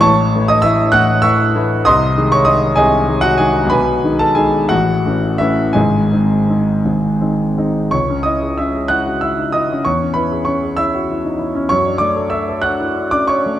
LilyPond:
\new Staff \with { instrumentName = "Grand piano" } { \time 6/8 \key cis \minor \tempo 4. = 63 << { <cis'' a'' cis'''>8. <dis'' dis'''>16 <e'' e'''>8 <fis'' fis'''>8 <e'' cis''' e'''>4 | <dis'' bis'' dis'''>8. <cis'' cis'''>16 <dis'' dis'''>8 <gis' dis'' gis''>8. <fis' fis''>16 <gis' gis''>8 | <b' gis'' b''>8. <a' a''>16 <gis' gis''>8 <fis' fis''>4 <e' e''>8 | <gis' dis'' gis''>4. r4. |
<cis'' cis'''>8 <dis'' dis'''>8 <e'' e'''>8 <fis'' fis'''>8 <e'' e'''>8 <dis'' dis'''>8 | <cis'' cis'''>8 <b' b''>8 <cis'' cis'''>8 <e'' e'''>4. | <cis'' cis'''>8 <d'' d'''>8 <e'' e'''>8 <fis'' fis'''>8. <d'' d'''>16 <cis'' cis'''>8 | } \\ { <a,, a,>8 <e a e'>8 <e a e'>8 <a,, a,>8 <e a e'>8 <e a e'>8 | <bis,, bis,>8 <dis gis gis'>8 <dis gis gis'>8 <bis,, bis,>8 <dis gis gis'>8 <dis gis>8 | <b,, b,>8 <dis gis dis'>8 <dis gis dis'>8 <a,, a,>8 <e a cis'>8 <e a cis'>8 | <gis,, gis,>8 <gis bis dis'>8 <gis bis dis'>8 <gis,, gis,>8 <gis bis dis'>8 <gis bis dis'>8 |
cis,16 cis'16 e'16 gis'16 cis'16 gis'16 e'16 fis'16 e'16 dis'16 e'16 cis'16 | e,16 cis'16 e'16 gis'16 cis'16 gis'16 e'16 fis'16 e'16 dis'16 e'16 cis'16 | fis,16 d'16 a16 a'16 d'16 a'16 d'16 e'16 d'16 cis'16 d'16 a16 | } >> }